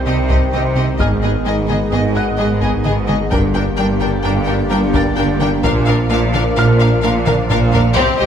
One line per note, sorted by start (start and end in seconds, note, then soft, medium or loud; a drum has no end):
0.00 1.01 C2 medium
0.00 3.28 D#3 medium
0.00 0.95 G3 medium
0.00 0.96 G3 medium
0.00 0.96 C4 medium
0.00 3.28 D#4 medium
0.00 0.96 C5 medium
0.00 0.73 G6 medium
0.06 0.48 C2 medium
0.06 0.47 C3 medium
0.06 0.21 C3 medium
0.06 0.14 C4 soft
0.06 0.14 G4 medium
0.06 0.16 D#5 medium
0.29 0.43 C2 medium
0.29 0.38 C4 soft
0.29 0.37 G4 medium
0.29 0.38 D#5 soft
0.29 taiko medium
0.53 0.67 C2 medium
0.53 0.94 C2 medium
0.53 0.94 C3 medium
0.53 0.61 C4 soft
0.53 0.62 G4 medium
0.53 0.62 D#5 soft
0.76 0.90 C3 medium
0.76 0.84 C4 soft
0.76 0.85 G4 soft
0.76 0.84 D#5 medium
0.99 1.40 G#1 medium
0.99 3.34 G#1 medium
0.99 1.13 G#2 medium
0.99 1.41 G#2 medium
0.99 3.33 G#3 medium
0.99 3.29 G#3 medium
0.99 1.08 B3 soft
0.99 3.32 B3 medium
0.99 3.33 B3 medium
0.99 1.08 G#4 medium
0.99 3.32 G#4 medium
0.99 1.07 D#5 medium
0.99 3.33 D#5 medium
0.99 2.35 F6 soft
0.99 taiko medium
1.22 1.36 G#2 medium
1.22 1.31 B3 medium
1.22 1.31 G#4 soft
1.22 1.30 D#5 soft
1.46 1.87 G#1 medium
1.46 1.87 G#2 medium
1.46 1.60 G#3 medium
1.46 1.54 B3 soft
1.46 1.54 G#4 medium
1.46 1.54 D#5 medium
1.69 1.83 G#2 medium
1.69 1.77 B3 medium
1.69 1.77 G#4 soft
1.69 1.77 D#5 medium
1.69 taiko mid soft
1.92 2.34 G#1 medium
1.92 2.07 G#2 medium
1.92 2.34 G#2 medium
1.92 2.00 B3 medium
1.92 2.00 G#4 soft
1.92 2.01 D#5 medium
2.15 2.30 G#2 medium
2.15 2.24 B3 medium
2.15 2.23 G#4 medium
2.15 2.24 D#5 soft
2.15 3.52 F#5 soft
2.15 3.52 F#6 soft
2.38 2.80 G#1 medium
2.38 2.80 G#2 medium
2.38 2.53 G#3 medium
2.38 2.46 B3 soft
2.38 2.47 G#4 medium
2.38 2.47 D#5 medium
2.61 2.76 G#2 medium
2.61 2.70 B3 soft
2.61 2.70 G#4 medium
2.61 2.69 D#5 soft
2.61 taiko medium
2.85 3.27 G#1 medium
2.85 3.26 G#2 medium
2.85 3.00 G#2 medium
2.85 2.93 B3 medium
2.85 2.93 G#4 medium
2.85 2.93 D#5 medium
2.85 taiko mid medium
3.08 3.23 G#3 medium
3.08 3.18 B3 medium
3.08 3.16 G#4 medium
3.08 3.16 D#5 medium
3.08 taiko mid soft
3.31 5.66 G1 medium
3.31 3.73 G1 medium
3.31 3.46 G2 medium
3.31 3.73 G2 medium
3.31 5.65 D3 medium
3.31 7.97 A#3 medium
3.31 7.98 A#3 medium
3.31 7.97 D4 medium
3.31 3.40 D4 medium
3.31 7.80 D4 medium
3.31 5.65 G4 medium
3.31 5.61 G4 medium
3.31 3.39 A#4 medium
3.31 7.97 D5 medium
3.31 3.40 G5 medium
3.31 taiko medium
3.55 3.69 G2 medium
3.55 3.63 D4 medium
3.55 3.63 A#4 medium
3.55 3.63 G5 medium
3.78 4.20 G1 medium
3.78 4.19 G2 medium
3.78 3.93 G3 medium
3.78 3.86 D4 medium
3.78 3.86 A#4 medium
3.78 3.86 G5 medium
4.00 4.16 G2 medium
4.00 4.09 D4 medium
4.00 4.09 A#4 medium
4.00 4.08 G5 medium
4.00 taiko mid soft
4.24 4.66 G1 medium
4.24 4.66 G2 medium
4.24 4.39 G2 loud
4.24 4.33 D4 medium
4.24 4.32 A#4 medium
4.24 4.32 G5 medium
4.46 4.63 G2 medium
4.46 4.56 D4 medium
4.46 4.55 A#4 medium
4.46 4.54 G5 soft
4.70 5.13 G1 medium
4.70 5.12 G2 medium
4.70 4.85 G3 medium
4.70 4.79 D4 medium
4.70 4.78 A#4 medium
4.70 4.78 G5 medium
4.93 5.09 G2 medium
4.93 5.01 D4 medium
4.93 5.02 A#4 medium
4.93 5.03 G5 medium
4.93 6.31 A6 medium
4.93 taiko medium
5.17 5.59 G1 medium
5.17 5.32 G2 medium
5.17 5.59 G2 medium
5.17 5.25 D4 medium
5.17 5.25 A#4 medium
5.17 5.25 G5 medium
5.17 taiko mid medium
5.40 5.55 G3 medium
5.40 5.49 D4 medium
5.40 5.48 A#4 medium
5.40 5.49 G5 medium
5.40 taiko mid soft
5.63 7.98 A#1 medium
5.63 6.06 A#1 medium
5.63 6.05 A#2 medium
5.63 5.79 A#2 medium
5.63 8.26 F3 medium
5.63 5.72 D4 medium
5.63 7.97 F4 medium
5.63 7.80 A#4 medium
5.63 5.72 A#4 medium
5.63 5.72 F5 medium
5.63 taiko loud
5.87 6.02 A#2 medium
5.87 5.95 D4 medium
5.87 5.96 A#4 medium
5.87 5.95 F5 medium
6.11 6.52 A#1 medium
6.11 6.52 A#2 medium
6.11 6.25 A#3 medium
6.11 6.19 D4 medium
6.11 6.19 A#4 medium
6.11 6.19 F5 medium
6.34 6.49 A#2 medium
6.34 6.42 D4 medium
6.34 6.43 A#4 medium
6.34 6.42 F5 medium
6.34 taiko mid medium
6.57 6.99 A#1 medium
6.57 6.99 A#2 medium
6.57 6.72 A#2 medium
6.57 6.65 D4 medium
6.57 6.65 A#4 medium
6.57 6.66 F5 medium
6.57 7.94 F6 medium
6.80 6.95 A#2 medium
6.80 6.89 D4 medium
6.80 6.88 A#4 medium
6.80 6.88 F5 medium
7.03 7.45 A#1 medium
7.03 7.45 A#2 medium
7.03 7.18 A#3 medium
7.03 7.12 D4 medium
7.03 7.11 A#4 medium
7.03 7.12 F5 medium
7.26 7.41 A#2 loud
7.26 7.35 D4 medium
7.26 7.34 A#4 medium
7.26 7.35 F5 medium
7.26 taiko mid medium
7.50 7.92 A#1 medium
7.50 7.92 A#2 medium
7.50 7.65 A#2 medium
7.50 7.59 D4 medium
7.50 7.59 A#4 medium
7.50 7.58 F5 medium
7.50 taiko low-mid medium
7.73 7.88 A#3 medium
7.73 7.83 D4 medium
7.73 7.82 A#4 medium
7.73 7.81 F5 medium
7.73 taiko low medium
7.96 8.11 C2 loud
7.96 8.26 C2 medium
7.96 8.06 C2 medium
7.96 8.05 C3 loud
7.96 8.26 G3 medium
7.96 8.19 C4 loud
7.96 8.26 C4 medium
7.96 8.19 C4 medium
7.96 8.18 G4 medium
7.96 8.26 C5 medium
7.96 taiko loud
8.19 8.26 C2 medium
8.19 8.26 C3 medium
8.19 8.26 C4 medium
8.19 8.26 G4 medium
8.19 8.26 D#5 medium